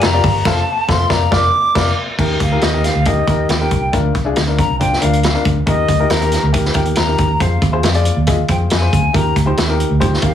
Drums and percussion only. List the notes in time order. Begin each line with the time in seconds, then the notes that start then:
0.01 snare, ride
0.24 kick, open hi-hat, ride
0.45 kick, snare, crash
0.89 kick, snare
1.10 kick, snare
1.32 kick, snare
1.75 kick, snare, crash
2.19 kick, crash
2.40 kick, closed hi-hat
2.61 snare, closed hi-hat
2.84 snare, closed hi-hat
3.05 kick, closed hi-hat
3.27 kick, closed hi-hat
3.49 snare, closed hi-hat
3.71 kick, closed hi-hat
3.93 kick, closed hi-hat
4.15 kick, closed hi-hat
4.36 snare, closed hi-hat
4.58 kick, closed hi-hat
4.81 kick, closed hi-hat
4.93 snare
5.02 closed hi-hat
5.13 closed hi-hat
5.23 snare, closed hi-hat
5.45 kick, closed hi-hat
5.67 kick, closed hi-hat
5.88 kick, closed hi-hat
6.10 snare, closed hi-hat
6.21 closed hi-hat
6.32 snare, closed hi-hat
6.54 kick, closed hi-hat
6.65 snare
6.74 kick, closed hi-hat
6.85 closed hi-hat
6.95 snare, closed hi-hat
7.18 kick, closed hi-hat
7.40 kick, closed hi-hat
7.62 kick, closed hi-hat
7.83 snare, closed hi-hat
7.94 closed hi-hat
8.05 closed hi-hat
8.27 kick, closed hi-hat
8.48 kick, closed hi-hat
8.70 snare, closed hi-hat
8.93 kick, closed hi-hat
9.14 kick, closed hi-hat
9.36 kick, closed hi-hat
9.57 snare, closed hi-hat
9.80 closed hi-hat
10.01 kick, closed hi-hat
10.14 snare
10.22 kick, closed hi-hat